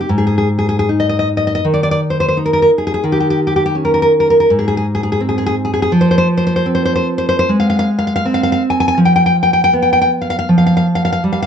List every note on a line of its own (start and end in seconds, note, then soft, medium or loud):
0.01 0.09 G4 medium
0.09 1.60 G#2 medium
0.18 0.26 G#4 medium
0.27 0.37 G#4 medium
0.38 0.48 G#4 medium
0.59 0.68 G#4 medium
0.69 0.78 G#4 medium
0.79 0.89 G#4 medium
0.89 2.00 D#4 soft
1.00 1.08 D#5 medium
1.09 1.18 D#5 medium
1.19 1.28 D#5 medium
1.37 1.46 D#5 medium
1.47 1.54 D#5 medium
1.55 1.64 D#5 medium
1.65 2.70 D#3 soft
1.74 1.82 D5 medium
1.83 1.90 D5 medium
1.91 2.00 D5 medium
2.10 2.18 C5 medium
2.20 2.27 C5 medium
2.28 2.36 C5 medium
2.37 3.05 D#4 soft
2.46 2.52 A#4 medium
2.53 2.61 A#4 medium
2.62 2.70 A#4 medium
2.78 2.86 G#4 medium
2.87 2.93 G#4 medium
2.94 3.03 G#4 medium
3.04 4.45 D#3 medium
3.12 3.19 G4 medium
3.20 3.29 G4 medium
3.30 3.39 G4 medium
3.47 3.55 G4 medium
3.56 3.65 G4 medium
3.66 3.75 G4 medium
3.75 4.49 C#4 soft
3.85 3.93 A#4 medium
3.94 4.01 A#4 medium
4.02 4.12 A#4 medium
4.20 4.29 A#4 medium
4.30 4.39 A#4 medium
4.40 4.49 A#4 medium
4.50 5.87 G#2 medium
4.59 4.67 G#4 medium
4.68 4.76 G#4 medium
4.77 4.85 G#4 medium
4.95 5.02 G#4 medium
5.03 5.11 G#4 medium
5.12 5.20 G#4 medium
5.20 5.91 C4 soft
5.29 5.37 G#4 medium
5.38 5.45 G#4 medium
5.46 5.55 G#4 medium
5.65 5.72 G#4 medium
5.74 5.81 G#4 medium
5.82 5.91 G#4 medium
5.92 7.47 F3 medium
6.01 6.09 C5 medium
6.11 6.17 C5 medium
6.18 6.27 C5 medium
6.37 6.45 C5 medium
6.47 6.55 C5 medium
6.56 6.65 C5 medium
6.66 7.90 C4 soft
6.75 6.84 C5 medium
6.85 6.94 C5 medium
6.96 7.07 C5 medium
7.18 7.28 C5 medium
7.29 7.38 C5 medium
7.39 7.50 C5 medium
7.49 8.62 G#3 soft
7.60 7.69 F5 medium
7.70 7.78 F5 medium
7.79 7.89 F5 medium
7.99 8.06 F5 medium
8.07 8.14 F5 medium
8.16 8.25 F5 medium
8.25 8.99 C4 soft
8.34 8.42 F5 medium
8.43 8.51 F5 medium
8.52 8.62 F5 medium
8.70 8.79 G#5 medium
8.80 8.87 G#5 medium
8.88 8.98 G#5 medium
8.98 10.43 F3 medium
9.05 9.15 G5 medium
9.16 9.25 G5 medium
9.26 9.36 G5 medium
9.43 9.52 G5 medium
9.53 9.63 G5 medium
9.64 9.73 G5 medium
9.73 10.85 B3 soft
9.82 9.92 G5 medium
9.93 10.00 G5 medium
10.02 10.10 G5 medium
10.22 10.29 F5 medium
10.30 10.38 F5 medium
10.39 10.48 F5 medium
10.49 11.46 F3 medium
10.58 10.65 F5 medium
10.66 10.76 F5 medium
10.77 10.86 F5 medium
10.95 11.04 F5 medium
11.05 11.11 F5 medium
11.13 11.22 F5 medium
11.24 11.46 G3 soft
11.33 11.41 F5 medium
11.42 11.46 F5 medium